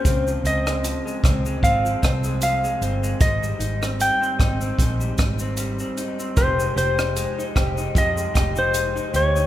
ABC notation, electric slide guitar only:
X:1
M:4/4
L:1/16
Q:"Swing 16ths" 1/4=76
K:Ab
V:1 name="Electric slide guitar"
c2 e6 f4 f4 | e4 g8- g2 z2 | c2 c6 e3 c3 d2 |]